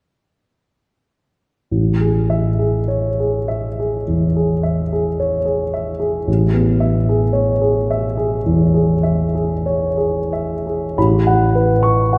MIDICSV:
0, 0, Header, 1, 2, 480
1, 0, Start_track
1, 0, Key_signature, 3, "major"
1, 0, Tempo, 1171875
1, 705, Time_signature, 4, 2, 24, 8
1, 1666, Tempo, 1123596
1, 2146, Tempo, 1088929
1, 3586, Tempo, 1209677
1, 4066, Tempo, 1301518
1, 4546, Tempo, 1142857
1, 5055, End_track
2, 0, Start_track
2, 0, Title_t, "Grand piano"
2, 0, Program_c, 0, 0
2, 702, Note_on_c, 0, 33, 31
2, 785, Control_c, 0, 64, 127
2, 820, Note_on_c, 0, 68, 26
2, 941, Note_on_c, 0, 76, 37
2, 1017, Note_off_c, 0, 68, 0
2, 1062, Note_on_c, 0, 68, 28
2, 1139, Note_off_c, 0, 76, 0
2, 1180, Note_on_c, 0, 73, 30
2, 1260, Note_off_c, 0, 68, 0
2, 1310, Note_on_c, 0, 68, 26
2, 1379, Note_off_c, 0, 73, 0
2, 1426, Note_on_c, 0, 76, 29
2, 1502, Note_off_c, 0, 68, 0
2, 1555, Note_on_c, 0, 68, 29
2, 1618, Note_off_c, 0, 76, 0
2, 1650, Note_off_c, 0, 33, 0
2, 1670, Note_on_c, 0, 40, 26
2, 1743, Note_off_c, 0, 68, 0
2, 1793, Note_on_c, 0, 68, 28
2, 1862, Note_off_c, 0, 40, 0
2, 1908, Note_on_c, 0, 76, 30
2, 1983, Note_off_c, 0, 68, 0
2, 2033, Note_on_c, 0, 68, 30
2, 2099, Note_off_c, 0, 76, 0
2, 2149, Note_on_c, 0, 73, 32
2, 2223, Note_off_c, 0, 68, 0
2, 2262, Note_on_c, 0, 68, 29
2, 2342, Note_off_c, 0, 73, 0
2, 2386, Note_on_c, 0, 76, 33
2, 2456, Note_off_c, 0, 68, 0
2, 2501, Note_on_c, 0, 68, 31
2, 2576, Note_off_c, 0, 76, 0
2, 2623, Note_on_c, 0, 33, 40
2, 2631, Control_c, 0, 64, 0
2, 2691, Note_off_c, 0, 68, 0
2, 2707, Control_c, 0, 64, 127
2, 2741, Note_on_c, 0, 59, 35
2, 2856, Note_on_c, 0, 76, 36
2, 2930, Note_off_c, 0, 59, 0
2, 2984, Note_on_c, 0, 68, 37
2, 3048, Note_off_c, 0, 76, 0
2, 3089, Note_on_c, 0, 73, 39
2, 3171, Note_off_c, 0, 68, 0
2, 3214, Note_on_c, 0, 68, 36
2, 3285, Note_off_c, 0, 73, 0
2, 3343, Note_on_c, 0, 76, 35
2, 3410, Note_off_c, 0, 68, 0
2, 3460, Note_on_c, 0, 68, 40
2, 3538, Note_off_c, 0, 76, 0
2, 3569, Note_off_c, 0, 33, 0
2, 3587, Note_on_c, 0, 40, 35
2, 3656, Note_off_c, 0, 68, 0
2, 3699, Note_on_c, 0, 68, 39
2, 3774, Note_off_c, 0, 40, 0
2, 3814, Note_on_c, 0, 76, 35
2, 3892, Note_off_c, 0, 68, 0
2, 3941, Note_on_c, 0, 68, 37
2, 4013, Note_off_c, 0, 76, 0
2, 4063, Note_on_c, 0, 73, 36
2, 4136, Note_off_c, 0, 68, 0
2, 4179, Note_on_c, 0, 68, 30
2, 4259, Note_off_c, 0, 73, 0
2, 4310, Note_on_c, 0, 76, 31
2, 4383, Note_off_c, 0, 68, 0
2, 4434, Note_on_c, 0, 68, 29
2, 4501, Note_off_c, 0, 76, 0
2, 4546, Note_off_c, 0, 68, 0
2, 4550, Note_on_c, 0, 33, 35
2, 4551, Note_on_c, 0, 83, 34
2, 4552, Control_c, 0, 64, 0
2, 4631, Control_c, 0, 64, 127
2, 4672, Note_on_c, 0, 78, 32
2, 4743, Note_off_c, 0, 83, 0
2, 4792, Note_on_c, 0, 71, 31
2, 4862, Note_off_c, 0, 78, 0
2, 4907, Note_on_c, 0, 85, 40
2, 4981, Note_off_c, 0, 71, 0
2, 5033, Note_on_c, 0, 78, 31
2, 5055, Note_off_c, 0, 33, 0
2, 5055, Note_off_c, 0, 78, 0
2, 5055, Note_off_c, 0, 85, 0
2, 5055, End_track
0, 0, End_of_file